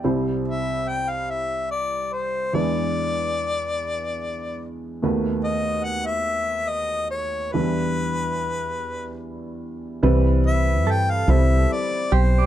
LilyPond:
<<
  \new Staff \with { instrumentName = "Harmonica" } { \time 6/8 \key c \major \tempo 4. = 48 r8 e''8 g''16 f''16 e''8 d''8 c''8 | d''2~ d''8 r8 | r8 dis''8 fis''16 e''8. dis''8 des''8 | b'2 r4 |
r8 e''8 g''16 f''16 e''8 d''8 c''8 | }
  \new Staff \with { instrumentName = "Clean electric guitar" } { \time 6/8 \key c \major r2. | r2. | r2. | r2. |
r4 a'4~ a'16 r16 g'16 d''16 | }
  \new Staff \with { instrumentName = "Upright piano" } { \time 6/8 \key c \major <g c' e' c''>2. | <gis d' e' b'>2. | <a b fis' b'>2. | <g d' e' b'>2. |
<g c' e' b'>4. <g c' e' c''>4. | }
  \new Staff \with { instrumentName = "Upright piano" } { \clef bass \time 6/8 \key c \major <c, c>2. | <e, e>2. | <dis, dis>2. | <e, e>2. |
e2. | }
  \new Staff \with { instrumentName = "Fretless electric bass" } { \clef bass \time 6/8 \key c \major r2. | r2. | r2. | r2. |
c,4 g,8 c,8 r8 b,,8 | }
>>